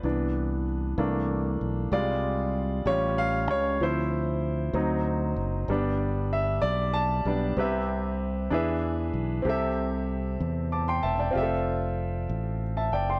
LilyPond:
<<
  \new Staff \with { instrumentName = "Grand piano" } { \time 6/8 \key c \major \tempo 4. = 64 << { b'4 r2 | d''4. cis''8 eis''8 cis''8 | c''2~ c''8 r8 | r4 e''8 d''8 a''8 r8 |
r2. | r2 <a'' d'''>16 <g'' c'''>16 <e'' a''>16 <d'' g''>16~ | <d'' g''>16 r2 <e'' a''>16 <d'' g''>16 <g'' c'''>16 | } \\ { r2. | r2. | r2. | r2. |
<c' g' b' e''>4. <d' gis' b' e''>4. | <c' g' a' e''>2. | <c' f' g' a' e''>2. | } >> }
  \new Staff \with { instrumentName = "Grand piano" } { \time 6/8 \key c \major <e b d'>4. <e a bes d'>4. | <g aes f'>8 r4 <g cis' eis'>4. | <f c' e'>4. <fis c' ees'>4. | <g b d'>2~ <g b d'>8 <g b d'>8 |
c4. e4. | c4. r4. | r2. | }
  \new Staff \with { instrumentName = "Fingered electric bass" } { \clef bass \time 6/8 \key c \major c,4. c,4 b,,8 | c,4. a,,4 cis,8 | d,4. d,4 fis,,8 | g,,4. b,,4 b,,8 |
c,4. e,4 b,,8 | c,4. e,4 e,,8 | f,,4. a,,4 fis,,8 | }
>>